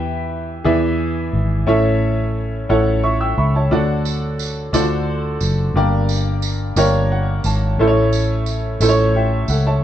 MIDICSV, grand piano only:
0, 0, Header, 1, 2, 480
1, 0, Start_track
1, 0, Tempo, 679502
1, 1182, Time_signature, 6, 3, 24, 8
1, 6949, End_track
2, 0, Start_track
2, 0, Title_t, "Grand piano"
2, 0, Program_c, 0, 0
2, 0, Control_c, 0, 64, 127
2, 0, Note_on_c, 0, 52, 72
2, 0, Note_on_c, 0, 64, 97
2, 0, Note_on_c, 0, 67, 81
2, 0, Note_on_c, 0, 71, 84
2, 0, Note_on_c, 0, 76, 89
2, 0, Note_on_c, 0, 79, 100
2, 361, Note_off_c, 0, 64, 0
2, 361, Note_off_c, 0, 71, 0
2, 362, Note_off_c, 0, 67, 0
2, 364, Note_off_c, 0, 76, 0
2, 365, Note_off_c, 0, 79, 0
2, 432, Note_off_c, 0, 52, 0
2, 455, Note_on_c, 0, 64, 82
2, 455, Note_on_c, 0, 68, 82
2, 460, Note_on_c, 0, 74, 81
2, 461, Note_on_c, 0, 52, 87
2, 461, Note_on_c, 0, 71, 74
2, 462, Note_on_c, 0, 76, 102
2, 470, Control_c, 0, 64, 0
2, 592, Control_c, 0, 64, 127
2, 1080, Note_off_c, 0, 64, 0
2, 1080, Note_off_c, 0, 68, 0
2, 1083, Note_off_c, 0, 71, 0
2, 1083, Note_off_c, 0, 74, 0
2, 1084, Note_off_c, 0, 76, 0
2, 1153, Note_off_c, 0, 52, 0
2, 1177, Note_on_c, 0, 61, 91
2, 1182, Note_on_c, 0, 64, 83
2, 1182, Note_on_c, 0, 73, 78
2, 1183, Note_on_c, 0, 45, 70
2, 1183, Note_on_c, 0, 69, 77
2, 1189, Note_on_c, 0, 76, 96
2, 1191, Control_c, 0, 64, 0
2, 1310, Control_c, 0, 64, 127
2, 1801, Note_off_c, 0, 61, 0
2, 1804, Note_off_c, 0, 64, 0
2, 1804, Note_off_c, 0, 69, 0
2, 1804, Note_off_c, 0, 73, 0
2, 1807, Note_off_c, 0, 76, 0
2, 1874, Note_off_c, 0, 45, 0
2, 1902, Note_on_c, 0, 61, 79
2, 1902, Note_on_c, 0, 64, 81
2, 1906, Note_on_c, 0, 69, 86
2, 1906, Note_on_c, 0, 73, 81
2, 1908, Note_on_c, 0, 78, 87
2, 2144, Note_off_c, 0, 73, 0
2, 2144, Note_on_c, 0, 76, 75
2, 2144, Note_on_c, 0, 85, 76
2, 2145, Note_off_c, 0, 78, 0
2, 2257, Note_off_c, 0, 85, 0
2, 2259, Note_off_c, 0, 76, 0
2, 2265, Note_on_c, 0, 88, 67
2, 2267, Note_on_c, 0, 79, 61
2, 2377, Note_off_c, 0, 88, 0
2, 2379, Note_off_c, 0, 79, 0
2, 2387, Note_on_c, 0, 83, 67
2, 2387, Note_on_c, 0, 85, 59
2, 2390, Note_on_c, 0, 76, 54
2, 2499, Note_off_c, 0, 85, 0
2, 2500, Note_off_c, 0, 76, 0
2, 2510, Note_on_c, 0, 81, 59
2, 2518, Note_on_c, 0, 73, 59
2, 2524, Note_off_c, 0, 61, 0
2, 2524, Note_off_c, 0, 64, 0
2, 2526, Note_off_c, 0, 69, 0
2, 2608, Note_off_c, 0, 83, 0
2, 2622, Note_on_c, 0, 62, 93
2, 2625, Note_on_c, 0, 66, 75
2, 2627, Note_on_c, 0, 69, 69
2, 2630, Note_on_c, 0, 50, 68
2, 2630, Note_on_c, 0, 74, 78
2, 2631, Note_on_c, 0, 78, 90
2, 2632, Control_c, 0, 64, 0
2, 2734, Note_off_c, 0, 81, 0
2, 2737, Control_c, 0, 64, 127
2, 2738, Note_off_c, 0, 73, 0
2, 3244, Note_off_c, 0, 62, 0
2, 3245, Note_off_c, 0, 66, 0
2, 3246, Note_off_c, 0, 69, 0
2, 3247, Note_off_c, 0, 74, 0
2, 3248, Note_off_c, 0, 78, 0
2, 3317, Note_off_c, 0, 50, 0
2, 3342, Note_on_c, 0, 62, 88
2, 3346, Note_on_c, 0, 65, 63
2, 3348, Note_on_c, 0, 69, 80
2, 3348, Note_on_c, 0, 74, 106
2, 3349, Note_on_c, 0, 50, 82
2, 3350, Note_on_c, 0, 72, 82
2, 3352, Control_c, 0, 64, 0
2, 3390, Note_off_c, 0, 65, 0
2, 3392, Note_on_c, 0, 66, 79
2, 3459, Control_c, 0, 64, 127
2, 3963, Note_off_c, 0, 62, 0
2, 3966, Note_off_c, 0, 69, 0
2, 3966, Note_off_c, 0, 74, 0
2, 3967, Note_off_c, 0, 72, 0
2, 3988, Note_off_c, 0, 66, 0
2, 4037, Note_off_c, 0, 50, 0
2, 4066, Note_on_c, 0, 58, 79
2, 4066, Note_on_c, 0, 62, 77
2, 4069, Control_c, 0, 64, 0
2, 4070, Note_on_c, 0, 43, 66
2, 4072, Note_on_c, 0, 67, 72
2, 4072, Note_on_c, 0, 70, 81
2, 4075, Note_on_c, 0, 74, 97
2, 4198, Control_c, 0, 64, 127
2, 4685, Note_off_c, 0, 58, 0
2, 4685, Note_off_c, 0, 62, 0
2, 4688, Note_off_c, 0, 67, 0
2, 4688, Note_off_c, 0, 70, 0
2, 4689, Note_off_c, 0, 74, 0
2, 4757, Note_off_c, 0, 43, 0
2, 4780, Note_on_c, 0, 58, 92
2, 4782, Note_on_c, 0, 62, 88
2, 4783, Note_on_c, 0, 67, 79
2, 4785, Note_on_c, 0, 70, 76
2, 4792, Note_on_c, 0, 73, 96
2, 5028, Note_on_c, 0, 78, 79
2, 5248, Note_off_c, 0, 78, 0
2, 5266, Note_on_c, 0, 81, 66
2, 5401, Note_off_c, 0, 58, 0
2, 5403, Note_off_c, 0, 62, 0
2, 5403, Note_off_c, 0, 67, 0
2, 5404, Note_off_c, 0, 70, 0
2, 5407, Note_off_c, 0, 73, 0
2, 5486, Note_off_c, 0, 81, 0
2, 5506, Note_on_c, 0, 57, 86
2, 5509, Control_c, 0, 64, 0
2, 5511, Note_on_c, 0, 61, 76
2, 5512, Note_on_c, 0, 45, 73
2, 5512, Note_on_c, 0, 64, 89
2, 5513, Note_on_c, 0, 72, 78
2, 5515, Note_on_c, 0, 69, 88
2, 5553, Note_off_c, 0, 72, 0
2, 5563, Note_on_c, 0, 73, 99
2, 5648, Control_c, 0, 64, 127
2, 6124, Note_off_c, 0, 57, 0
2, 6127, Note_off_c, 0, 61, 0
2, 6127, Note_off_c, 0, 64, 0
2, 6129, Note_off_c, 0, 69, 0
2, 6153, Note_off_c, 0, 73, 0
2, 6198, Note_off_c, 0, 45, 0
2, 6224, Note_on_c, 0, 57, 87
2, 6226, Note_on_c, 0, 61, 85
2, 6228, Note_on_c, 0, 64, 81
2, 6232, Note_on_c, 0, 69, 83
2, 6233, Note_on_c, 0, 72, 77
2, 6272, Note_off_c, 0, 72, 0
2, 6278, Note_on_c, 0, 73, 111
2, 6466, Note_off_c, 0, 69, 0
2, 6468, Note_on_c, 0, 76, 73
2, 6470, Note_on_c, 0, 67, 65
2, 6489, Note_off_c, 0, 73, 0
2, 6692, Note_off_c, 0, 76, 0
2, 6693, Note_off_c, 0, 67, 0
2, 6708, Note_on_c, 0, 78, 69
2, 6713, Note_on_c, 0, 69, 52
2, 6818, Note_off_c, 0, 78, 0
2, 6821, Note_off_c, 0, 69, 0
2, 6829, Note_on_c, 0, 81, 68
2, 6830, Note_on_c, 0, 73, 62
2, 6843, Note_off_c, 0, 57, 0
2, 6844, Note_off_c, 0, 61, 0
2, 6846, Note_off_c, 0, 64, 0
2, 6949, Note_off_c, 0, 73, 0
2, 6949, Note_off_c, 0, 81, 0
2, 6949, End_track
0, 0, End_of_file